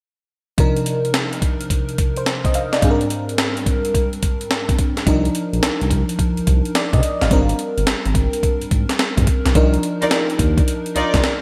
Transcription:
0.58 C3 F3 D4 D#4 A#4, kick, closed hi-hat
0.77 closed hi-hat
0.86 closed hi-hat
1.05 closed hi-hat
1.14 snare, closed hi-hat
1.33 closed hi-hat
1.42 kick, closed hi-hat
1.61 closed hi-hat
1.70 kick, closed hi-hat
1.89 closed hi-hat
1.98 kick, closed hi-hat
2.16 C5, closed hi-hat
2.26 snare, closed hi-hat
2.45 D#5, kick, closed hi-hat
2.54 F5, closed hi-hat
2.73 D5, snare, closed hi-hat
2.82 G#2 G3 C4 D4 G#4, kick, closed hi-hat
2.91 A#4
3.01 closed hi-hat
3.10 closed hi-hat
3.29 closed hi-hat
3.38 snare, closed hi-hat
3.57 closed hi-hat
3.66 kick, closed hi-hat
3.85 closed hi-hat
3.94 kick, closed hi-hat
4.13 closed hi-hat
4.23 kick, closed hi-hat
4.41 closed hi-hat
4.51 snare, closed hi-hat
4.69 kick, closed hi-hat
4.79 kick, closed hi-hat
4.97 snare, closed hi-hat
5.06 C2 F3 D4 D#4 A#4, kick, closed hi-hat
5.25 closed hi-hat
5.35 closed hi-hat
5.53 A#1, closed hi-hat
5.63 C2, snare, closed hi-hat
5.81 C2, closed hi-hat
5.91 kick, closed hi-hat
6.09 closed hi-hat
6.19 kick, closed hi-hat
6.37 C2, closed hi-hat
6.47 C2, kick, closed hi-hat
6.65 closed hi-hat
6.75 D5, snare, closed hi-hat
6.93 C3 D#5, kick, closed hi-hat
7.03 closed hi-hat
7.21 G1 F5, snare, closed hi-hat
7.30 G#1 G3 C4 D4 A#4, kick, closed hi-hat
7.49 closed hi-hat
7.59 closed hi-hat
7.78 G1, closed hi-hat
7.87 G#1, snare, closed hi-hat
8.05 G#1, closed hi-hat
8.15 kick, closed hi-hat
8.33 closed hi-hat
8.43 kick, closed hi-hat
8.62 G#1, closed hi-hat
8.71 G#1, kick, closed hi-hat
8.89 snare, closed hi-hat
8.99 snare, closed hi-hat
9.17 G#2, kick, closed hi-hat
9.27 kick, closed hi-hat
9.46 B1, snare, closed hi-hat
9.55 C2 F3 D4 D#4 A#4, kick, closed hi-hat
9.74 closed hi-hat
9.83 closed hi-hat
10.01 D#2 D#4 F4 A#4 D5, closed hi-hat
10.11 snare, closed hi-hat
10.30 closed hi-hat
10.39 D#2, kick, closed hi-hat
10.58 kick, closed hi-hat
10.68 closed hi-hat
10.86 closed hi-hat
10.95 C2 D#4 F4 A#4 D5, closed hi-hat
11.14 C2, kick, snare, closed hi-hat
11.24 snare, closed hi-hat

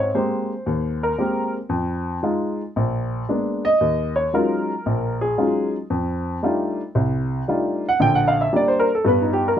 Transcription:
0.00 C#5
0.14 G#3 A#3 C4 G4 C5
0.66 D#2
1.03 A#4
1.18 G#3 A#3 C4 G4
1.69 F2
2.23 G#3 D#4 F4
2.76 A#1
3.29 G#3 A#3 B3 D4
3.65 D#5
3.81 D#2
4.16 C#5
4.33 F#3 G#3 C#4 D#4 F4 A#4
4.86 A#1
5.21 G#4
5.38 F#3 G#3 C#4 D#4 F4
5.90 F2
6.43 G3 A3 D4 D#4 F4
6.95 C2
7.48 G3 A3 D4 D#4 F4
7.89 F#5
8.00 A#1 D3 G5
8.15 F#5
8.28 F5
8.41 E5
8.53 G3 A#3 D4 D5
8.68 C5
8.80 A#4
8.95 A4
9.05 G2 B3 B4
9.22 D#4
9.33 G4
9.48 A#4
9.57 G3

